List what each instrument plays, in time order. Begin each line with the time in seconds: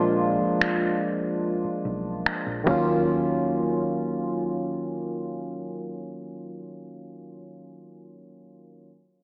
Already playing: fingered electric bass A#1, synth keys F3 G#3 A#3 D4 F4
0.41 muted fingered electric bass stroke
0.61 finger snap
1.64 muted fingered electric bass stroke
1.85 fingered electric bass B1
2.26 finger snap
2.46 fingered electric bass A#1
2.64 fingered electric bass D#2, synth keys D#3 F#3 A#3, kick, crash
2.69 synth keys C#4 F4